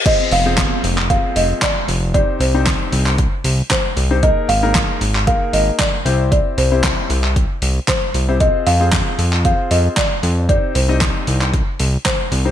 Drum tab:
CC |x---------------|----------------|----------------|----------------|
HH |x-o-x-o-x-o-x-o-|x-o-x-o-x-o-x-o-|x-o-x-o-x-o-x-o-|x-o-x-o-x-o-x-o-|
CP |----x--x----x---|----x--x----x---|----x--x----x---|----x--x----x---|
SD |----o-------o---|----o-------o---|----o-------o---|----o-------o---|
BD |o---o---o---o---|o---o---o---o---|o---o---o---o---|o---o---o---o---|

CC |----------------|----------------|
HH |x-o-x-o-x-o-x-o-|x-o-x-o-x-o-x-o-|
CP |----x--x----x---|----x--x----x---|
SD |----o-------o---|----o-------o---|
BD |o---o---o---o---|o---o---o---o---|